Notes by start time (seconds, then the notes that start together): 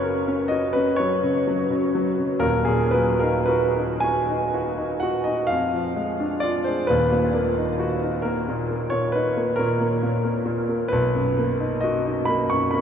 Already playing: F#1 F#2 C#3 F#3 C#4 F#4 A#4 B4 C#5 D#5
0.03 A#4
0.28 C#4
0.48 F#4 D#5
0.73 C#4 B4
0.96 F#3 C#5
1.23 C#3
1.47 F#3
1.70 C#3
1.95 F#3
2.19 C#3
2.40 D#1 D#2 A#4
2.65 A#2 G#4
2.91 F#3 B4
3.19 D#4 A#4
3.46 F#4 B4
3.76 D#4
4.00 F#4 G#5
4.30 D#4
4.54 F#4
4.78 D#4
5.00 F#4 F#5
5.24 D#4 D#5
5.47 F2 F5
5.74 F3
5.96 G#3
6.20 D4
6.40 F4 D5
6.64 G#4 C5
6.87 D#1 D#2 B4
7.12 A#2
7.34 A#3
7.58 D#4
7.79 F#4
8.03 D#4
8.22 A#3 A#4
8.49 A#2
8.70 A#3
8.90 A#2 C#5
9.12 D#4 B4
9.37 A#3
9.56 A#2 A#4
9.80 A#3
10.03 A#2
10.25 A#3
10.45 A#2
10.69 A#3
10.88 B1 B4
11.15 F#2
11.38 A#3
11.60 D#4
11.81 F#4 D#5
12.07 D#4
12.25 A#3 B5
12.50 F#2 C#6
12.71 A#3 B5